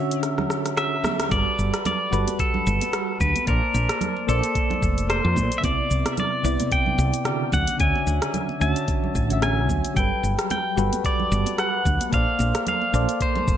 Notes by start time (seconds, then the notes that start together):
Already playing: D3 C#4 F#4 E5
0.11 closed hi-hat, shaker
0.23 cross-stick, closed hi-hat, shaker
0.38 cross-stick, low conga
0.50 cross-stick, shaker
0.66 cross-stick, closed hi-hat, shaker
0.77 D3 C#4 F#4 E5, cross-stick, closed hi-hat, shaker
1.04 cross-stick, muted conga, high conga, low conga, shaker
1.20 cross-stick, closed hi-hat, high conga, shaker
1.29 G1 G3 F#4 A4 D5, kick, closed hi-hat, muted conga, shaker
1.34 B4
1.59 G1, shaker
1.74 cross-stick, closed hi-hat, shaker
1.85 D5, closed hi-hat, muted conga, low conga, shaker
2.11 G1 G3 F#4 A4 B4, shaker
2.28 closed hi-hat, muted conga, high conga, shaker
2.39 A4, kick, closed hi-hat, shaker
2.54 low conga
2.67 G1, shaker
2.81 closed hi-hat, muted conga, shaker
2.92 G3 F#4 A4 B4, cross-stick, closed hi-hat, shaker
3.20 D2 B4, kick, muted conga, low conga, shaker
3.36 closed hi-hat, high conga, shaker
3.45 A#1 A#3 A#4 C5 A5, kick, closed hi-hat, shaker
3.50 D5
3.74 A#1, muted conga, shaker
3.89 cross-stick, closed hi-hat, shaker
4.01 closed hi-hat, low conga, shaker
4.17 muted conga
4.27 A#1 A#3 A4 C5 D5, shaker
4.43 closed hi-hat, shaker
4.55 kick, closed hi-hat, shaker
4.70 muted conga, low conga
4.82 F1, kick, shaker
4.98 closed hi-hat, shaker
5.08 A#3 A4 C5 D5, cross-stick, closed hi-hat, muted conga, shaker
5.25 F2
5.36 A#2, kick, high conga, low conga, shaker
5.52 closed hi-hat, shaker
5.58 C3 E5
5.62 C2 B3 E4 D5, kick, closed hi-hat, muted conga, shaker
5.91 C2, shaker
6.06 cross-stick, closed hi-hat, muted conga, shaker
6.17 D5, closed hi-hat, low conga, shaker
6.43 C2 C3 B3 E4 D5, shaker
6.60 closed hi-hat, muted conga, high conga, shaker
6.72 G5, kick, closed hi-hat, shaker
6.86 low conga
6.98 C2, muted conga, shaker
7.14 closed hi-hat, shaker
7.25 C#3 D3 F#4 D5, cross-stick, closed hi-hat, shaker
7.52 D2 F#5, kick, muted conga, low conga, shaker
7.67 closed hi-hat, high conga, shaker
7.78 D2 D3 C#4 F#4 G#5, kick, closed hi-hat, shaker
7.83 E5
7.95 muted conga
8.07 D2, shaker
8.22 cross-stick, closed hi-hat, shaker
8.34 closed hi-hat, low conga, shaker
8.49 muted conga
8.60 D2 D3 C#4 F#4 E5 G#5, shaker
8.72 A5, closed hi-hat
8.77 shaker
8.88 kick, closed hi-hat, muted conga, shaker
9.04 low conga
9.15 A1, kick, shaker
9.28 D3 C#4 F#4, closed hi-hat, shaker
9.33 E5
9.42 G#5, cross-stick, closed hi-hat, muted conga, shaker
9.69 D2, kick, high conga, low conga, shaker
9.84 closed hi-hat, muted conga, shaker
9.94 G1 F#3 G3 A4 G5, kick, closed hi-hat, muted conga, shaker
9.99 B4
10.23 G1, shaker
10.39 cross-stick, closed hi-hat, shaker
10.50 G5, closed hi-hat, muted conga, low conga, shaker
10.76 G1 G3 F#4 A4 B4, shaker
10.93 closed hi-hat, muted conga, high conga, shaker
11.04 D5, kick, closed hi-hat, shaker
11.20 low conga
11.32 G1, shaker
11.46 closed hi-hat, muted conga, shaker
11.57 G3 F#4 A4 B4 F#5, cross-stick, closed hi-hat, shaker
11.85 D2, kick, muted conga, low conga, shaker
12.00 closed hi-hat, high conga, shaker
12.10 A#1 A#3 A4 C5, kick, closed hi-hat, shaker
12.14 D5 F5
12.39 A#1, muted conga, shaker
12.55 cross-stick, closed hi-hat, shaker
12.67 F5, closed hi-hat, low conga, shaker
12.82 muted conga
12.93 A#1 A#3 A4 C5 D5, shaker
13.09 closed hi-hat, shaker
13.21 C5, kick, closed hi-hat, shaker
13.36 muted conga, low conga
13.48 F1, kick, shaker